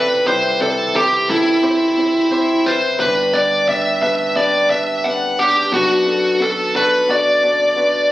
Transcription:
0.00 0.23 C2 medium
0.00 0.23 C3 medium
0.00 0.26 C4 medium
0.00 0.27 E4 medium
0.00 0.27 G4 medium
0.00 0.61 A4 loud
0.00 0.27 B4 medium
0.00 3.02 D5 loud
0.26 2.96 C2 medium
0.26 2.96 C3 medium
0.26 0.52 C4 medium
0.26 0.52 E4 medium
0.26 0.53 G4 medium
0.26 0.53 B4 medium
0.26 0.62 C5 medium
0.60 0.86 C4 medium
0.60 0.87 E4 medium
0.60 0.87 G4 medium
0.60 0.87 A4 medium
0.60 0.93 A4 medium
0.95 1.20 C4 medium
0.95 1.21 E4 medium
0.95 1.21 G4 medium
0.95 1.30 G4 medium
0.95 1.21 C5 medium
1.29 1.55 C4 medium
1.29 1.55 E4 medium
1.29 2.70 E4 medium
1.29 1.55 G4 medium
1.29 1.55 A4 medium
1.63 1.89 C4 medium
1.63 1.89 E4 medium
1.63 1.89 G4 medium
1.63 1.89 C5 medium
1.97 2.23 C4 medium
1.97 2.23 E4 medium
1.97 2.23 G4 medium
1.97 2.24 C5 medium
2.31 2.57 C4 medium
2.31 2.57 E4 medium
2.31 2.57 G4 medium
2.31 2.57 C5 loud
2.65 2.91 C4 medium
2.65 2.91 E4 medium
2.65 2.91 G4 medium
2.65 2.92 B4 medium
2.65 3.00 C5 loud
2.99 5.68 G1 medium
2.99 5.68 G2 medium
2.99 3.25 B3 medium
2.99 3.25 D4 medium
2.99 3.25 G4 medium
2.99 3.35 B4 loud
2.99 3.25 B4 medium
3.33 3.59 B3 medium
3.33 3.59 D4 medium
3.33 3.59 G4 medium
3.33 3.68 D5 loud
3.33 3.60 D5 medium
3.68 3.93 B3 medium
3.68 3.93 D4 medium
3.68 3.94 G4 medium
3.68 3.94 D5 medium
3.68 4.00 E5 loud
4.01 4.27 B3 medium
4.01 4.27 D4 medium
4.01 4.28 G4 medium
4.01 4.28 B4 medium
4.01 4.34 E5 loud
4.36 4.61 B3 medium
4.36 4.61 D4 medium
4.36 4.62 G4 medium
4.36 4.62 B4 loud
4.36 4.70 D5 loud
4.70 4.95 B3 medium
4.70 4.96 D4 medium
4.70 4.96 G4 medium
4.70 4.96 B4 medium
4.70 5.05 E5 loud
5.04 5.30 B3 medium
5.04 5.30 D4 medium
5.04 5.30 G4 medium
5.04 5.30 B4 medium
5.04 5.39 F#5 loud
5.38 5.64 B3 medium
5.38 5.64 D4 medium
5.38 5.64 G4 medium
5.38 5.73 G4 loud
5.38 5.64 B4 medium
5.72 8.12 B1 medium
5.72 8.12 B2 medium
5.72 5.98 B3 loud
5.72 5.98 D4 medium
5.72 5.98 F#4 medium
5.72 6.43 F#4 loud
5.72 5.98 B4 medium
6.06 6.32 B3 medium
6.06 6.32 D4 medium
6.06 6.32 F#4 medium
6.06 6.32 A4 medium
6.40 6.66 B3 medium
6.40 6.66 D4 medium
6.40 6.66 F#4 medium
6.40 6.76 A4 medium
6.40 6.66 B4 medium
6.74 7.00 B3 medium
6.74 7.00 D4 medium
6.74 7.00 F#4 medium
6.74 7.00 A4 medium
6.74 7.11 B4 medium
7.08 7.34 B3 medium
7.08 7.34 D4 medium
7.08 7.34 F#4 medium
7.08 7.34 D5 loud
7.08 8.12 D5 medium
7.42 7.68 B3 medium
7.42 7.68 D4 medium
7.42 7.68 F#4 medium
7.42 7.69 D5 medium
7.76 8.02 B3 medium
7.76 8.02 D4 medium
7.76 8.02 F#4 medium
7.76 8.02 B4 medium

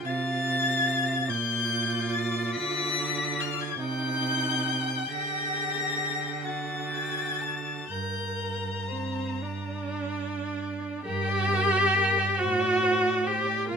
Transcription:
0.00 1.24 F4 medium
0.05 1.30 C3 medium
0.05 1.30 F5 loud
0.05 1.31 A6 loud
1.27 2.57 A#2 medium
1.27 3.75 F4 medium
1.27 3.80 D5 medium
1.27 2.14 G6 loud
2.13 2.54 A6 loud
2.54 3.78 D3 medium
2.54 3.42 B6 loud
3.40 3.63 F6 loud
3.61 3.81 G#6 loud
3.78 5.06 C3 medium
3.78 5.05 D#4 medium
3.78 6.44 G5 medium
3.78 5.10 G6 loud
5.08 7.87 D3 medium
5.08 6.41 G4 medium
5.08 6.47 A#6 loud
6.43 7.87 F#4 medium
6.43 6.90 F#5 medium
6.43 7.88 A6 loud
6.91 7.43 G5 medium
7.41 7.93 A5 medium
7.88 10.77 G2 medium
7.88 8.88 A#4 medium
7.88 10.22 A#5 medium
7.88 8.88 G6 medium
8.88 9.44 C5 medium
8.93 9.44 C4 medium
9.42 11.04 D4 medium
9.42 11.02 D5 medium
11.02 12.25 G2 medium
11.02 12.41 G4 loud
11.02 11.30 A#4 medium
11.02 12.42 G5 loud
11.29 11.55 D5 medium
11.53 11.78 A#4 medium
11.77 11.97 D5 medium
11.97 12.19 A#4 medium
12.18 12.39 D5 medium
12.39 13.55 A2 medium
12.39 13.28 F#4 loud
12.39 12.63 C5 medium
12.39 13.28 F#5 loud
12.62 12.84 D5 medium
12.83 13.06 C5 medium
13.05 13.25 D5 medium
13.26 13.68 G4 loud
13.26 13.48 C5 medium
13.26 13.72 G5 medium
13.47 13.68 D5 medium
13.68 13.77 A#2 medium
13.68 13.77 F4 loud
13.68 13.77 A#4 medium
13.68 13.77 F5 loud

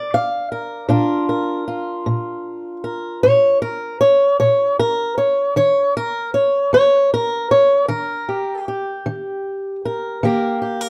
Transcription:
0.00 0.43 A#2 medium
0.00 0.87 D4 soft
0.00 0.14 D5 medium
0.14 0.51 F5 medium
0.52 0.90 A#4 medium
0.89 1.59 A#2 medium
0.89 5.51 D4 medium
0.89 1.66 F4 medium
0.89 1.29 A#4 medium
1.29 2.84 A#4 soft
1.68 5.51 F4 soft
2.06 2.76 A#2 medium
2.84 3.23 A#4 soft
3.23 3.94 A#2 medium
3.23 3.61 C#5 medium
3.62 4.00 A#4 medium
4.01 4.38 C#5 loud
4.40 5.10 A#2 medium
4.40 4.78 C#5 medium
4.79 5.17 A#4 medium
5.18 5.55 C#5 medium
5.56 6.26 D#3 medium
5.56 5.95 C#5 medium
5.97 6.34 A#4 medium
6.34 6.73 C#5 medium
6.73 7.42 D#3 medium
6.73 7.12 C#5 loud
7.14 7.51 A#4 medium
7.51 7.88 C#5 medium
7.88 8.59 D#3 medium
7.88 8.66 A#4 medium
8.29 8.67 G4 soft
8.68 10.18 G4 soft
9.06 9.75 D#3 medium
9.85 10.25 A#4 medium
10.23 10.89 D#3 medium
10.23 10.89 A#3 medium
10.23 10.60 G4 medium
10.23 10.61 A#4 soft
10.62 10.81 G4 soft
10.81 10.89 A#4 soft

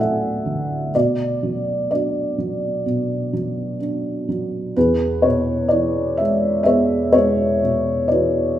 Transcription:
0.00 0.90 D2 soft
0.00 0.92 A2 soft
0.00 0.96 F#3 soft
0.00 0.90 A3 soft
0.00 0.96 A4 soft
0.00 0.92 D5 medium
0.00 0.91 E5 medium
0.00 0.97 F#5 medium
0.00 0.96 G#5 medium
0.00 0.96 A5 medium
0.45 0.93 D3 soft
0.95 2.84 B2 medium
0.95 1.91 F#4 soft
0.95 1.87 D5 medium
1.43 2.37 F#3 soft
1.91 3.77 D4 soft
1.91 3.78 F#4 soft
1.91 3.77 D5 medium
2.38 3.32 F#3 soft
2.86 4.72 B2 soft
3.33 4.27 F#3 soft
3.80 4.73 D4 soft
4.29 4.75 F#3 soft
4.76 8.55 E2 medium
4.76 6.64 G#4 medium
4.76 5.25 B4 medium
5.22 7.11 B2 soft
5.22 5.68 C#5 medium
5.68 6.19 D5 medium
5.73 7.59 E3 soft
6.17 7.14 G#3 soft
6.17 6.62 E5 medium
6.63 7.14 G#4 medium
6.63 7.11 C#5 medium
6.63 7.09 E5 medium
6.68 8.55 B3 medium
7.13 8.55 G#3 soft
7.13 8.55 G#4 medium
7.13 8.06 C#5 medium
7.64 8.57 B2 soft
8.08 8.58 E3 soft
8.08 8.59 F#4 soft
8.08 8.59 B4 soft
8.08 8.59 D5 medium

